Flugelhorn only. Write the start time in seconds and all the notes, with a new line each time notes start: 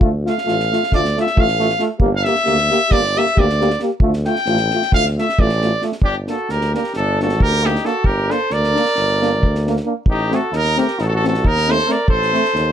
6.03 D4
6.30 F#4
6.51 G4
6.76 G4
6.99 D4
7.21 F#4
7.43 G4
7.64 D#4
7.86 F#4
8.05 G4
8.30 A4
8.52 A#4
10.10 D#4
10.33 F#4
10.53 D#4
10.78 G4
10.99 D#4
11.06 F#4
11.13 F#4
11.27 F#4
11.45 D#4
11.70 A4
11.88 A#4
12.09 A4